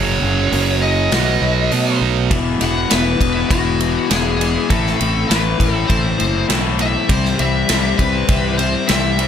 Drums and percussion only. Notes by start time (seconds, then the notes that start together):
0.52 open hi-hat
1.11 snare, open hi-hat
1.71 open hi-hat
2.31 kick, ride
2.61 snare, ride
2.91 snare, ride
3.21 kick, ride
3.51 kick, ride
3.80 ride
4.11 snare, ride
4.41 ride
4.70 kick, ride
4.87 snare
5.01 ride
5.31 snare, ride
5.60 kick, ride
5.90 kick, ride
6.20 ride
6.50 snare, ride
6.79 ride
7.09 kick, ride
7.25 snare
7.39 ride
7.69 snare, ride
7.99 kick, ride
8.28 kick, ride
8.59 ride
8.89 snare, ride
9.19 ride